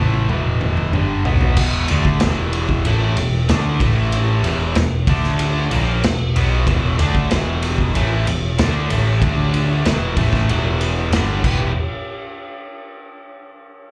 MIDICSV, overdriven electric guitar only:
0, 0, Header, 1, 2, 480
1, 0, Start_track
1, 0, Key_signature, 1, "minor"
1, 0, Tempo, 636943
1, 1185, Time_signature, 4, 2, 24, 8
1, 10483, End_track
2, 0, Start_track
2, 0, Title_t, "Overdriven electric guitar"
2, 0, Program_c, 0, 29
2, 0, Note_on_c, 0, 45, 77
2, 0, Note_on_c, 0, 52, 95
2, 0, Note_on_c, 0, 57, 86
2, 213, Note_off_c, 0, 52, 0
2, 216, Note_off_c, 0, 45, 0
2, 217, Note_on_c, 0, 40, 85
2, 219, Note_off_c, 0, 57, 0
2, 222, Note_on_c, 0, 47, 105
2, 222, Note_on_c, 0, 52, 102
2, 694, Note_off_c, 0, 40, 0
2, 697, Note_off_c, 0, 47, 0
2, 697, Note_off_c, 0, 52, 0
2, 705, Note_on_c, 0, 43, 84
2, 708, Note_on_c, 0, 50, 92
2, 713, Note_on_c, 0, 55, 90
2, 938, Note_off_c, 0, 43, 0
2, 940, Note_off_c, 0, 50, 0
2, 942, Note_off_c, 0, 55, 0
2, 944, Note_on_c, 0, 47, 82
2, 948, Note_on_c, 0, 54, 89
2, 949, Note_on_c, 0, 59, 93
2, 1178, Note_off_c, 0, 47, 0
2, 1180, Note_off_c, 0, 54, 0
2, 1180, Note_off_c, 0, 59, 0
2, 1190, Note_on_c, 0, 40, 88
2, 1194, Note_on_c, 0, 47, 98
2, 1194, Note_on_c, 0, 52, 99
2, 1421, Note_off_c, 0, 40, 0
2, 1423, Note_off_c, 0, 47, 0
2, 1423, Note_off_c, 0, 52, 0
2, 1434, Note_on_c, 0, 50, 91
2, 1434, Note_on_c, 0, 57, 86
2, 1438, Note_on_c, 0, 62, 96
2, 1663, Note_off_c, 0, 50, 0
2, 1663, Note_off_c, 0, 57, 0
2, 1665, Note_off_c, 0, 62, 0
2, 1671, Note_on_c, 0, 40, 94
2, 1677, Note_on_c, 0, 47, 91
2, 1680, Note_on_c, 0, 52, 95
2, 2141, Note_off_c, 0, 40, 0
2, 2144, Note_off_c, 0, 47, 0
2, 2146, Note_off_c, 0, 52, 0
2, 2157, Note_on_c, 0, 45, 90
2, 2159, Note_on_c, 0, 57, 110
2, 2160, Note_on_c, 0, 52, 93
2, 2384, Note_off_c, 0, 45, 0
2, 2385, Note_off_c, 0, 57, 0
2, 2386, Note_off_c, 0, 52, 0
2, 2397, Note_on_c, 0, 40, 67
2, 2398, Note_on_c, 0, 47, 76
2, 2583, Note_off_c, 0, 40, 0
2, 2584, Note_off_c, 0, 47, 0
2, 2628, Note_on_c, 0, 50, 83
2, 2636, Note_on_c, 0, 57, 94
2, 2638, Note_on_c, 0, 62, 105
2, 2860, Note_off_c, 0, 50, 0
2, 2864, Note_off_c, 0, 57, 0
2, 2865, Note_off_c, 0, 62, 0
2, 2873, Note_on_c, 0, 45, 87
2, 2876, Note_on_c, 0, 52, 90
2, 2883, Note_on_c, 0, 57, 100
2, 3342, Note_off_c, 0, 45, 0
2, 3343, Note_off_c, 0, 52, 0
2, 3347, Note_off_c, 0, 57, 0
2, 3349, Note_on_c, 0, 40, 87
2, 3351, Note_on_c, 0, 47, 96
2, 3357, Note_on_c, 0, 52, 104
2, 3580, Note_off_c, 0, 40, 0
2, 3581, Note_off_c, 0, 47, 0
2, 3584, Note_off_c, 0, 52, 0
2, 3594, Note_on_c, 0, 40, 64
2, 3599, Note_on_c, 0, 47, 73
2, 3782, Note_off_c, 0, 40, 0
2, 3784, Note_off_c, 0, 47, 0
2, 3831, Note_on_c, 0, 50, 97
2, 3833, Note_on_c, 0, 57, 90
2, 3838, Note_on_c, 0, 62, 97
2, 4301, Note_off_c, 0, 50, 0
2, 4302, Note_off_c, 0, 57, 0
2, 4304, Note_off_c, 0, 62, 0
2, 4313, Note_on_c, 0, 46, 91
2, 4313, Note_on_c, 0, 53, 100
2, 4319, Note_on_c, 0, 58, 99
2, 4542, Note_off_c, 0, 46, 0
2, 4542, Note_off_c, 0, 53, 0
2, 4545, Note_off_c, 0, 58, 0
2, 4549, Note_on_c, 0, 40, 59
2, 4552, Note_on_c, 0, 47, 72
2, 4739, Note_off_c, 0, 40, 0
2, 4741, Note_off_c, 0, 47, 0
2, 4794, Note_on_c, 0, 47, 95
2, 4798, Note_on_c, 0, 54, 90
2, 4799, Note_on_c, 0, 59, 99
2, 5022, Note_off_c, 0, 47, 0
2, 5024, Note_off_c, 0, 54, 0
2, 5025, Note_off_c, 0, 59, 0
2, 5030, Note_on_c, 0, 40, 88
2, 5032, Note_on_c, 0, 47, 98
2, 5034, Note_on_c, 0, 52, 101
2, 5259, Note_off_c, 0, 47, 0
2, 5260, Note_off_c, 0, 40, 0
2, 5262, Note_off_c, 0, 52, 0
2, 5262, Note_on_c, 0, 50, 92
2, 5267, Note_on_c, 0, 57, 92
2, 5269, Note_on_c, 0, 62, 105
2, 5496, Note_off_c, 0, 50, 0
2, 5499, Note_off_c, 0, 57, 0
2, 5500, Note_off_c, 0, 62, 0
2, 5505, Note_on_c, 0, 40, 90
2, 5507, Note_on_c, 0, 47, 95
2, 5511, Note_on_c, 0, 52, 101
2, 5977, Note_off_c, 0, 40, 0
2, 5978, Note_off_c, 0, 47, 0
2, 5980, Note_off_c, 0, 52, 0
2, 5989, Note_on_c, 0, 45, 90
2, 5995, Note_on_c, 0, 57, 111
2, 5996, Note_on_c, 0, 52, 99
2, 6219, Note_off_c, 0, 45, 0
2, 6222, Note_off_c, 0, 57, 0
2, 6223, Note_off_c, 0, 52, 0
2, 6229, Note_on_c, 0, 40, 71
2, 6230, Note_on_c, 0, 47, 70
2, 6418, Note_off_c, 0, 40, 0
2, 6419, Note_off_c, 0, 47, 0
2, 6468, Note_on_c, 0, 50, 93
2, 6473, Note_on_c, 0, 57, 93
2, 6475, Note_on_c, 0, 62, 104
2, 6699, Note_off_c, 0, 50, 0
2, 6702, Note_off_c, 0, 57, 0
2, 6702, Note_off_c, 0, 62, 0
2, 6709, Note_on_c, 0, 45, 89
2, 6715, Note_on_c, 0, 52, 93
2, 6718, Note_on_c, 0, 57, 108
2, 6939, Note_off_c, 0, 45, 0
2, 6941, Note_off_c, 0, 57, 0
2, 6942, Note_off_c, 0, 52, 0
2, 6946, Note_on_c, 0, 50, 96
2, 6950, Note_on_c, 0, 57, 113
2, 6957, Note_on_c, 0, 62, 104
2, 7418, Note_off_c, 0, 50, 0
2, 7420, Note_off_c, 0, 57, 0
2, 7423, Note_off_c, 0, 62, 0
2, 7424, Note_on_c, 0, 40, 85
2, 7432, Note_on_c, 0, 47, 99
2, 7435, Note_on_c, 0, 52, 101
2, 7657, Note_off_c, 0, 40, 0
2, 7660, Note_off_c, 0, 47, 0
2, 7660, Note_off_c, 0, 52, 0
2, 7668, Note_on_c, 0, 45, 93
2, 7669, Note_on_c, 0, 52, 94
2, 7673, Note_on_c, 0, 57, 103
2, 7899, Note_off_c, 0, 45, 0
2, 7899, Note_off_c, 0, 52, 0
2, 7901, Note_off_c, 0, 57, 0
2, 7905, Note_on_c, 0, 40, 99
2, 7910, Note_on_c, 0, 47, 95
2, 7915, Note_on_c, 0, 52, 102
2, 8377, Note_off_c, 0, 40, 0
2, 8380, Note_off_c, 0, 47, 0
2, 8382, Note_off_c, 0, 52, 0
2, 8389, Note_on_c, 0, 43, 81
2, 8393, Note_on_c, 0, 50, 91
2, 8397, Note_on_c, 0, 55, 97
2, 8619, Note_off_c, 0, 43, 0
2, 8619, Note_off_c, 0, 50, 0
2, 8622, Note_on_c, 0, 52, 93
2, 8623, Note_off_c, 0, 55, 0
2, 8626, Note_on_c, 0, 59, 91
2, 8629, Note_on_c, 0, 64, 99
2, 8633, Note_on_c, 0, 67, 98
2, 8815, Note_off_c, 0, 52, 0
2, 8817, Note_off_c, 0, 59, 0
2, 8818, Note_off_c, 0, 64, 0
2, 8820, Note_off_c, 0, 67, 0
2, 10483, End_track
0, 0, End_of_file